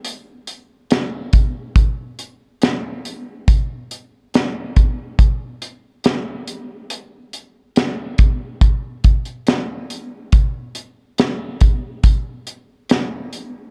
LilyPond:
\new DrumStaff \with { instrumentName = "Drums" } \drummode { \time 4/4 \tempo 4 = 70 hh8 hh8 <hh sn>8 <hh bd>8 <hh bd>8 hh8 <hh sn>8 hh8 | <hh bd>8 hh8 <hh sn>8 <hh bd>8 <hh bd>8 hh8 <hh sn>8 hh8 | hh8 hh8 <hh sn>8 <hh bd>8 <hh bd>8 <hh bd>16 hh16 <hh sn>8 hh8 | <hh bd>8 hh8 <hh sn>8 <hh bd>8 <hh bd>8 hh8 <hh sn>8 hh8 | }